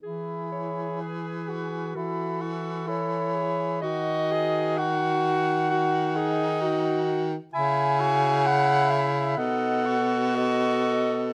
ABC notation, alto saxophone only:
X:1
M:4/4
L:1/8
Q:1/4=64
K:E
V:1 name="Alto saxophone"
G4 F E A G | F4 F G F2 | E4 A2 A2 |]